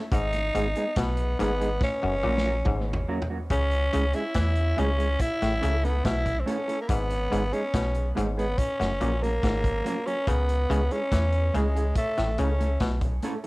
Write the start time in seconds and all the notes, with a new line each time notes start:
0.12 G#1 G#2 D#4, kick, closed hi-hat
0.33 closed hi-hat
0.54 G#1 G#2 G#3 B3 D#4 G#4, closed hi-hat
0.75 G#3 B3 D#4 G#4, closed hi-hat
0.96 B1 B2 B3, kick, snare, closed hi-hat
1.17 closed hi-hat
1.39 G#1 G#2 G#3 B3 D#4 G#4, closed hi-hat
1.60 G#3 B3 D#4 G#4, closed hi-hat
1.81 C#4, kick, snare
2.03 F#1 F#2
2.23 A#1 A#2 F#3 A#3 C#4 F#4
2.38 snare
2.45 F#3 A#3 C#4 F#4
2.65 G#1 G#2, kick, mid tom
2.93 floor tom
3.08 F#3 A#3 C#4 F#4
3.22 floor tom
3.30 F#3 A#3 C#4 F#4
3.50 C#2 C#3 C#4, kick, closed hi-hat
3.71 closed hi-hat
3.93 C#2 C#3 G#3 C#4 E4 G#4, closed hi-hat
4.13 G#3 C#4 E4 G#4, closed hi-hat
4.34 E2 E3, kick, snare, closed hi-hat
4.55 closed hi-hat
4.77 C#2 C#3 G#3 C#4 E4 G#4, closed hi-hat
4.98 G#3 C#4 E4 G#4, closed hi-hat
5.19 E4, kick, closed hi-hat
5.42 A1 A2, snare, closed hi-hat
5.61 C#2 C#3 A3 C#4 E4 A4, closed hi-hat
5.83 A3 B3 C#4 E4 A4, closed hi-hat
6.05 B1 B2 E4, kick, snare, closed hi-hat
6.26 kick, closed hi-hat
6.40 C4
6.46 A3 C#4 E4 A4, closed hi-hat
6.68 A3 C#4 E4 A4, closed hi-hat
6.82 A#3
6.89 G#1 G#2 B3, kick, closed hi-hat
7.10 closed hi-hat
7.30 G#1 G#2 G#3 B3 D#4 G#4, closed hi-hat
7.53 G#3 B3 C#4 D#4 G#4, closed hi-hat
7.74 B1 B2, kick, snare, closed hi-hat
7.94 closed hi-hat
8.15 G#1 G#2 G#3 B3 D#4 G#4, closed hi-hat
8.37 G#3 B3 D#4 G#4, closed hi-hat
8.58 C#4, kick, closed hi-hat
8.80 F#1 F#2, snare, closed hi-hat
9.00 A#1 A#2 F#3 A#3 C#4 F#4, closed hi-hat
9.22 F#3 A#3 C#4 F#4, closed hi-hat
9.43 G#1 G#2, kick, snare, closed hi-hat
9.64 kick, closed hi-hat
9.85 F#3 A#3 C#4 F#4, closed hi-hat
10.06 F#3 A#3 C#4 F#4, closed hi-hat
10.27 C#2 C#3 B3, kick, closed hi-hat
10.49 closed hi-hat
10.69 C#2 C#3 G#3 C#4 E4 G#4, closed hi-hat
10.91 G#3 C#4 E4 G#4, closed hi-hat
11.12 E2 E3, kick, snare, closed hi-hat
11.32 closed hi-hat
11.53 C#2 C#3 G#3 C#4 E4 G#4, closed hi-hat
11.75 G#3 C#4 E4 G#4, closed hi-hat
11.95 A3, kick, closed hi-hat
12.17 A1 A2, snare, closed hi-hat
12.38 C#2 C#3 A3 C#4 E4 A4, closed hi-hat
12.59 A3 C#4 E4 A4, closed hi-hat
12.80 B1 B2, kick, snare, closed hi-hat
13.01 kick, closed hi-hat
13.22 A3 C#4 E4 A4, closed hi-hat
13.44 A4, closed hi-hat